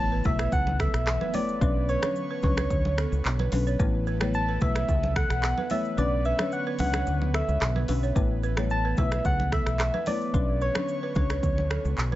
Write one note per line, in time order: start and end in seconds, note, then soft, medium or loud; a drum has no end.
0.00 0.21 A1 loud
0.00 1.59 E3 medium
0.00 0.22 A3 medium
0.00 1.59 A3 medium
0.00 0.22 B3 medium
0.00 3.76 B3 medium
0.00 0.22 E4 medium
0.00 0.22 B4 medium
0.00 0.27 A5 loud
0.00 impact medium
0.12 0.22 B4 medium
0.24 0.47 B1 medium
0.24 0.50 A3 medium
0.24 0.50 B3 medium
0.24 0.50 E4 medium
0.24 0.50 B4 medium
0.24 0.52 E5 loud
0.24 kick medium
0.24 high conga medium
0.24 low conga medium
0.24 shaker medium
0.39 0.49 B4 medium
0.39 finger snap medium
0.39 cross-stick loud
0.39 high conga medium
0.39 shaker medium
0.52 0.86 C#2 loud
0.52 0.78 F#5 loud
0.52 kick loud
0.52 low conga medium
0.52 shaker medium
0.67 high conga medium
0.80 0.91 A4 medium
0.80 1.36 E5 loud
0.80 finger snap medium
0.80 kick medium
0.80 cross-stick medium
0.80 shaker medium
0.94 1.16 B1 medium
0.94 finger snap medium
0.94 cross-stick medium
0.94 shaker medium
1.07 finger snap medium
1.07 cross-stick loud
1.07 clap loud
1.07 shaker medium
1.21 1.31 B4 medium
1.21 high conga medium
1.34 1.54 A3 medium
1.34 1.54 B3 medium
1.34 1.54 E4 medium
1.34 1.54 B4 medium
1.34 1.45 C#5 medium
1.34 1.91 D5 loud
1.34 open hi-hat medium
1.34 high conga medium
1.34 shaker medium
1.49 shaker medium
1.61 1.95 B1 loud
1.61 3.77 D3 medium
1.61 1.81 F#3 medium
1.61 1.81 C#4 medium
1.61 1.81 D4 medium
1.61 1.81 B4 loud
1.61 3.77 C#5 medium
1.61 kick loud
1.61 shaker medium
1.89 2.00 B4 medium
1.89 2.43 C#5 loud
1.89 shaker medium
2.02 2.40 F#3 medium
2.02 2.40 C#4 medium
2.02 2.40 D4 medium
2.02 2.40 B4 medium
2.02 2.13 C#5 medium
2.02 finger snap medium
2.02 cross-stick loud
2.02 high conga medium
2.02 shaker medium
2.16 shaker medium
2.31 2.40 B4 medium
2.42 2.66 C#2 loud
2.42 2.68 F#3 medium
2.42 2.68 C#4 medium
2.42 2.69 D4 medium
2.42 2.69 B4 medium
2.42 3.49 C#5 medium
2.42 kick medium
2.42 high conga medium
2.42 low conga medium
2.42 shaker medium
2.57 2.67 B4 medium
2.57 finger snap medium
2.57 cross-stick loud
2.57 high conga medium
2.57 shaker medium
2.70 3.04 D2 loud
2.70 kick loud
2.70 low conga medium
2.70 shaker medium
2.85 high conga medium
2.98 3.09 A4 medium
2.98 finger snap medium
2.98 cross-stick medium
2.98 shaker medium
3.12 3.23 C#2 loud
3.12 shaker medium
3.25 3.47 B1 medium
3.25 clap loud
3.25 shaker medium
3.39 3.49 B4 medium
3.39 high conga medium
3.52 3.75 B1 medium
3.52 3.72 F#3 medium
3.52 3.72 C#4 medium
3.52 3.72 D4 medium
3.52 3.72 B4 medium
3.52 open hi-hat medium
3.52 high conga medium
3.52 shaker medium
3.67 3.77 C#5 medium
3.67 shaker medium
3.79 4.57 A1 loud
3.79 5.96 E3 medium
3.79 3.99 A3 medium
3.79 5.96 A3 medium
3.79 3.99 B3 medium
3.79 12.15 B3 medium
3.79 3.99 E4 medium
3.79 3.99 B4 loud
3.79 kick loud
3.79 shaker medium
4.07 4.18 B4 medium
4.07 shaker medium
4.21 4.58 A3 medium
4.21 4.58 B3 medium
4.21 4.58 E4 medium
4.21 4.58 B4 medium
4.21 4.31 C#5 medium
4.21 finger snap medium
4.21 cross-stick loud
4.21 high conga medium
4.21 shaker medium
4.34 4.64 A5 loud
4.34 shaker medium
4.49 4.58 B4 medium
4.60 4.84 B1 loud
4.60 4.86 A3 medium
4.60 4.87 B3 medium
4.60 4.87 E4 medium
4.60 4.87 B4 medium
4.60 5.18 E5 loud
4.60 kick medium
4.60 high conga medium
4.60 low conga medium
4.60 shaker medium
4.75 4.86 B4 medium
4.75 finger snap medium
4.75 cross-stick loud
4.75 high conga medium
4.75 shaker medium
4.89 5.22 C#2 loud
4.89 kick loud
4.89 low conga medium
4.89 shaker medium
5.03 high conga medium
5.16 5.27 A4 medium
5.16 5.73 F#5 loud
5.16 finger snap medium
5.16 kick medium
5.16 cross-stick medium
5.16 shaker medium
5.30 5.52 B1 medium
5.30 finger snap medium
5.30 cross-stick medium
5.30 shaker medium
5.43 finger snap medium
5.43 cross-stick loud
5.43 clap loud
5.43 shaker medium
5.58 5.68 B4 medium
5.58 high conga medium
5.70 5.90 A3 medium
5.70 5.90 B3 medium
5.70 5.90 E4 medium
5.70 5.90 B4 medium
5.70 5.82 C#5 medium
5.70 6.00 E5 loud
5.70 open hi-hat medium
5.70 high conga medium
5.70 shaker medium
5.85 shaker medium
5.97 6.32 B1 loud
5.97 8.14 D3 medium
5.97 6.17 F#3 loud
5.97 6.17 C#4 medium
5.97 6.18 D4 medium
5.97 6.18 B4 loud
5.97 8.14 C#5 medium
5.97 6.27 D5 loud
5.97 low conga medium
5.97 shaker medium
6.25 6.36 B4 medium
6.25 6.52 E5 medium
6.25 shaker medium
6.39 6.76 F#3 medium
6.39 6.76 C#4 medium
6.39 6.76 D4 medium
6.39 6.77 B4 medium
6.39 6.49 C#5 medium
6.39 finger snap medium
6.39 cross-stick loud
6.39 high conga medium
6.39 shaker medium
6.52 6.65 F#5 medium
6.52 shaker medium
6.67 6.77 B4 medium
6.79 7.02 C#2 loud
6.79 7.05 F#3 medium
6.79 7.05 C#4 medium
6.79 7.05 D4 medium
6.79 7.05 B4 medium
6.79 7.31 F#5 loud
6.79 open hi-hat medium
6.79 high conga medium
6.79 low conga medium
6.79 shaker medium
6.93 7.04 B4 medium
6.93 finger snap medium
6.93 cross-stick loud
6.93 high conga medium
6.93 shaker medium
7.07 7.41 D2 medium
7.07 low conga medium
7.07 shaker medium
7.22 high conga medium
7.34 7.45 A4 medium
7.34 7.85 E5 medium
7.34 finger snap medium
7.34 cross-stick medium
7.34 shaker medium
7.48 7.59 C#2 loud
7.48 shaker medium
7.61 7.84 B1 medium
7.61 finger snap medium
7.61 cross-stick loud
7.61 clap loud
7.61 shaker medium
7.76 7.86 B4 medium
7.76 high conga medium
7.88 8.11 B1 medium
7.88 8.08 F#3 medium
7.88 8.08 C#4 medium
7.88 8.08 D4 medium
7.88 8.09 B4 medium
7.88 open hi-hat medium
7.88 high conga medium
7.88 shaker medium
8.03 8.13 C#5 medium
8.03 shaker medium
8.15 8.94 A1 loud
8.15 10.32 E3 medium
8.15 8.35 A3 medium
8.15 10.32 A3 medium
8.15 8.36 B3 medium
8.15 8.36 E4 medium
8.15 8.36 B4 loud
8.15 kick loud
8.15 shaker medium
8.43 8.54 B4 medium
8.43 shaker medium
8.57 8.94 A3 medium
8.57 8.95 B3 medium
8.57 8.95 E4 medium
8.57 8.95 B4 medium
8.57 8.67 C#5 medium
8.57 finger snap medium
8.57 cross-stick loud
8.57 high conga medium
8.57 shaker medium
8.70 9.00 A5 loud
8.70 shaker medium
8.85 8.95 B4 medium
8.97 9.20 B1 loud
8.97 9.23 A3 medium
8.97 9.23 B3 medium
8.97 9.23 E4 medium
8.97 9.23 B4 medium
8.97 9.27 E5 loud
8.97 kick medium
8.97 high conga medium
8.97 low conga medium
8.97 shaker medium
9.12 9.22 B4 medium
9.12 finger snap medium
9.12 cross-stick loud
9.12 high conga medium
9.12 shaker medium
9.25 9.59 C#2 loud
9.25 9.55 F#5 loud
9.25 kick loud
9.25 low conga medium
9.25 shaker medium
9.40 high conga medium
9.52 9.63 A4 medium
9.52 10.09 E5 loud
9.52 finger snap medium
9.52 kick medium
9.52 cross-stick loud
9.52 shaker medium
9.66 9.89 B1 medium
9.66 finger snap medium
9.66 cross-stick medium
9.66 shaker medium
9.80 finger snap medium
9.80 cross-stick loud
9.80 clap loud
9.80 shaker medium
9.94 10.04 B4 medium
9.94 high conga medium
10.06 10.26 A3 medium
10.06 10.27 B3 medium
10.06 10.27 E4 medium
10.06 10.27 B4 medium
10.06 10.18 C#5 medium
10.06 10.64 D5 loud
10.06 open hi-hat medium
10.06 high conga medium
10.06 shaker medium
10.21 shaker medium
10.34 10.68 B1 loud
10.34 12.15 D3 medium
10.34 10.54 F#3 medium
10.34 10.54 C#4 medium
10.34 10.54 D4 medium
10.34 10.54 B4 loud
10.34 12.15 C#5 medium
10.34 kick loud
10.34 shaker medium
10.61 10.72 B4 medium
10.61 11.16 C#5 loud
10.61 shaker medium
10.75 11.13 F#3 medium
10.75 11.13 C#4 medium
10.75 11.13 D4 medium
10.75 11.13 B4 medium
10.75 10.86 C#5 medium
10.75 finger snap medium
10.75 cross-stick loud
10.75 high conga medium
10.75 shaker medium
10.88 shaker medium
11.03 11.13 B4 medium
11.15 11.38 C#2 loud
11.15 11.41 F#3 medium
11.15 11.41 C#4 medium
11.15 11.41 D4 medium
11.15 11.41 B4 medium
11.15 12.15 C#5 medium
11.15 kick loud
11.15 high conga medium
11.15 low conga medium
11.15 shaker medium
11.30 11.40 B4 medium
11.30 finger snap medium
11.30 cross-stick loud
11.30 high conga medium
11.30 shaker medium
11.43 11.77 D2 loud
11.43 kick medium
11.43 low conga medium
11.43 shaker medium
11.58 high conga medium
11.71 11.81 A4 medium
11.71 finger snap medium
11.71 cross-stick loud
11.71 shaker medium
11.85 11.95 C#2 loud
11.85 shaker medium
11.98 12.15 B1 medium
11.98 clap loud
11.98 shaker medium
12.12 12.15 B4 medium
12.12 high conga medium